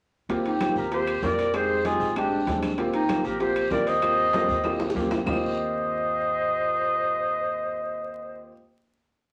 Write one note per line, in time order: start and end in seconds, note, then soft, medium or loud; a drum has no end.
0.29 0.73 D#2 medium
0.29 0.51 A#3 medium
0.29 0.51 C4 medium
0.29 0.51 F4 medium
0.29 0.51 G4 loud
0.29 high bongo medium
0.29 high conga soft
0.29 high timbale medium
0.29 long guiro medium
0.45 0.75 D#4 medium
0.45 0.75 G4 medium
0.45 high bongo soft
0.45 high conga soft
0.45 high timbale medium
0.60 0.83 A#3 medium
0.60 0.83 C4 medium
0.60 0.83 F4 medium
0.60 0.83 G4 medium
0.60 high bongo medium
0.60 high conga loud
0.60 high timbale medium
0.60 low timbale medium
0.60 short guiro medium
0.60 claves medium
0.76 1.19 D#2 medium
0.76 0.91 G4 medium
0.76 0.92 A#4 medium
0.76 high bongo soft
0.76 high conga soft
0.76 short guiro medium
0.91 1.13 A#3 medium
0.91 1.13 C4 medium
0.91 1.13 F4 medium
0.91 1.13 G4 medium
0.91 1.25 G4 medium
0.91 1.26 C5 medium
0.91 high bongo medium
0.91 high conga soft
0.91 high timbale medium
0.91 long guiro medium
1.07 high conga soft
1.07 high timbale medium
1.07 claves medium
1.22 1.95 F2 medium
1.22 1.44 A#3 medium
1.22 1.44 C4 medium
1.22 1.45 F4 medium
1.22 1.45 G4 medium
1.22 1.56 A#4 medium
1.22 1.57 D5 medium
1.22 high bongo soft
1.22 low bongo medium
1.22 high conga medium
1.22 low timbale medium
1.22 short guiro medium
1.38 high bongo soft
1.38 high timbale medium
1.38 short guiro medium
1.54 1.76 G#3 medium
1.54 1.75 C4 medium
1.54 1.76 D#4 medium
1.54 1.76 G4 medium
1.54 1.85 G#4 medium
1.54 1.85 C5 medium
1.54 high bongo medium
1.54 high conga soft
1.54 high timbale medium
1.54 long guiro medium
1.54 claves medium
1.69 high bongo soft
1.69 high conga soft
1.85 2.07 G#3 medium
1.85 2.07 C4 medium
1.85 2.07 D#4 medium
1.85 2.14 F4 medium
1.85 2.07 G4 medium
1.85 2.14 G#4 medium
1.85 high bongo medium
1.85 high conga medium
1.85 high timbale medium
1.85 low timbale medium
1.85 short guiro medium
2.00 2.43 A#1 medium
2.00 high conga soft
2.00 short guiro medium
2.16 2.38 G#3 medium
2.16 2.38 C4 medium
2.16 2.60 D4 medium
2.16 2.38 D4 medium
2.16 2.38 G4 medium
2.16 2.60 G4 medium
2.16 high bongo medium
2.16 high conga soft
2.16 high timbale medium
2.16 claves medium
2.32 high conga soft
2.47 3.19 D#2 medium
2.47 2.69 G#3 medium
2.47 2.69 C4 medium
2.47 2.69 D4 medium
2.47 2.69 G4 medium
2.47 high bongo soft
2.47 low bongo medium
2.47 high conga medium
2.47 high timbale medium
2.47 low timbale medium
2.47 short guiro medium
2.62 high bongo soft
2.62 high conga medium
2.62 high timbale medium
2.62 short guiro medium
2.62 claves medium
2.78 3.00 A#3 medium
2.78 3.00 C4 medium
2.78 3.00 F4 medium
2.78 3.00 G4 loud
2.78 high bongo medium
2.78 high conga soft
2.78 high timbale medium
2.93 3.26 D#4 medium
2.93 3.27 G4 medium
2.93 high bongo soft
2.93 high conga soft
2.93 high timbale medium
3.09 3.31 A#3 medium
3.09 3.31 C4 medium
3.09 3.31 F4 medium
3.09 3.31 G4 medium
3.09 high bongo medium
3.09 high conga loud
3.09 high timbale medium
3.09 low timbale medium
3.09 short guiro medium
3.09 claves medium
3.24 3.68 A#1 medium
3.24 3.40 G4 medium
3.24 3.41 A#4 medium
3.24 high bongo soft
3.24 high conga soft
3.24 short guiro medium
3.40 3.62 A#3 medium
3.40 3.62 C4 medium
3.40 3.62 F4 medium
3.40 3.69 G4 medium
3.40 3.62 G4 medium
3.40 3.70 C5 medium
3.40 high bongo medium
3.40 high conga soft
3.40 high timbale medium
3.40 long guiro medium
3.56 high conga soft
3.56 high timbale medium
3.56 claves medium
3.71 4.43 D#2 medium
3.71 3.93 A#3 medium
3.71 3.93 C4 medium
3.71 3.93 F4 medium
3.71 3.93 G4 medium
3.71 3.88 A#4 medium
3.71 3.90 D5 loud
3.71 high bongo soft
3.71 low bongo medium
3.71 high conga medium
3.71 low timbale medium
3.71 short guiro medium
3.87 4.96 C5 medium
3.87 4.96 D#5 medium
3.87 high bongo soft
3.87 high timbale medium
3.87 short guiro medium
4.02 4.24 A#3 medium
4.02 4.24 C4 medium
4.02 4.24 F4 medium
4.02 4.25 G4 medium
4.02 high bongo medium
4.02 high conga soft
4.02 high timbale medium
4.02 long guiro medium
4.02 claves medium
4.18 high bongo soft
4.18 high conga soft
4.33 4.55 A#3 medium
4.33 4.55 C4 medium
4.33 4.55 F4 medium
4.33 4.55 G4 medium
4.33 high bongo medium
4.33 high conga medium
4.33 high timbale loud
4.33 short guiro medium
4.48 4.92 D#2 medium
4.48 high bongo soft
4.48 high conga soft
4.48 high timbale medium
4.48 short guiro medium
4.64 4.87 A#3 medium
4.64 4.87 C4 medium
4.64 4.87 F4 medium
4.64 4.87 G4 loud
4.64 high bongo medium
4.64 high conga soft
4.64 low timbale medium
4.64 long guiro medium
4.64 claves medium
4.80 high bongo medium
4.80 high conga soft
4.80 low timbale medium
4.90 high bongo medium
4.95 5.23 D#2 medium
4.95 5.17 A#3 medium
4.95 5.17 C4 medium
4.95 5.18 F4 medium
4.95 5.18 G4 loud
4.95 high conga medium
4.95 short guiro medium
5.00 low bongo medium
5.11 low bongo medium
5.11 high conga medium
5.11 low timbale loud
5.11 short guiro medium
5.11 claves medium
5.24 8.51 D#2 medium
5.24 8.49 A#3 medium
5.24 8.50 C4 medium
5.24 8.52 F4 medium
5.24 8.51 C5 medium
5.24 8.52 D#5 medium
5.24 low bongo medium
5.24 low conga loud
5.24 low timbale medium
5.24 long guiro medium
5.24 claves loud
5.29 8.53 G4 medium